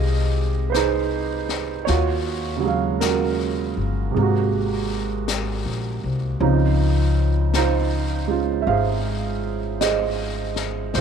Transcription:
Already playing: upright bass C2, grand piano D#3 F3 G#3 F4 G4 G#4 C5 D#5 F5
0.70 grand piano B4 C5
0.74 grand piano D#4 G#4, brush sweep, snare, hi-hat pedal
1.49 snare
1.85 upright bass D#2, grand piano C#5, brush sweep, snare
1.89 grand piano F4 F#4
2.57 grand piano C#3 F#3
2.64 grand piano G#3 F5
3.00 grand piano C#4 F#4 A#4, brush sweep, snare, hi-hat pedal
3.77 upright bass G1
4.11 grand piano C3 G#3, brush sweep
4.17 upright bass G#1, grand piano A#3
4.23 grand piano F#4
5.28 brush sweep, snare, hi-hat pedal
5.66 upright bass A#1
6.04 upright bass C2
6.40 upright bass C#2, grand piano C#3 F3 C4 D#4, brush sweep
7.54 grand piano D#4 F4 C5, brush sweep, snare, hi-hat pedal
8.28 grand piano G#3 C#4 F4
8.62 grand piano E5
8.67 upright bass G#1, grand piano G#4 C5 F5, brush sweep
9.81 grand piano G#4 C5 D#5, brush sweep, snare, hi-hat pedal
10.56 snare
10.94 upright bass A#1, grand piano C5, brush sweep, snare

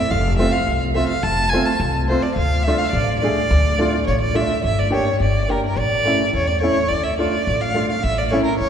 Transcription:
Already playing: violin E5
0.11 upright bass F1, violin F5
0.38 upright piano A3 C4 F4, violin E5
0.52 violin F5
0.67 upright bass C2
0.94 upright piano A3 C4 F4, violin E5
1.09 violin F5
1.23 upright bass F1, violin A5
1.49 upright piano A3, violin G#5
1.54 upright piano C4 F4
1.66 violin A5
1.80 upright bass C2
2.08 upright piano A3 C4 F4, violin C5
2.22 violin D5
2.35 upright bass D2, violin F5
2.63 violin E5
2.67 upright piano A3 D4 F4
2.78 violin F5
2.84 violin E5 F5
2.91 upright bass A1, violin D5
3.20 upright piano A3 D4, violin D5
3.24 upright piano G#4
3.51 upright bass D2
3.79 upright piano A3 D4 F4
4.07 upright bass A1, violin C#5
4.21 violin D5
4.34 upright piano A3 D4 F4, violin E5
4.64 upright bass G1, violin E5
4.79 violin D5
4.90 upright piano A#3 D4 G4, violin C#5
5.20 upright bass G1, violin D5
5.49 upright piano A#3 D4 G4, violin A#4
5.66 violin A#4
5.76 upright bass A1, violin D5
6.05 upright piano A3 C#4 E4
6.33 upright bass E2, violin C#5
6.48 violin D5
6.61 upright piano A3 C#4 E4, violin C#5
6.88 upright bass D2, violin D5
7.04 violin E5
7.18 upright piano A3 D4 F4, violin D5
7.47 upright bass A1
7.61 violin F5
7.74 upright piano A3 D4 F4
7.90 violin F5
8.03 upright bass A1, violin E5
8.18 violin D5
8.27 upright piano A3, violin C#5 D5
8.32 upright piano C#4 E4
8.44 violin A#4
8.59 upright bass E2, violin C#5

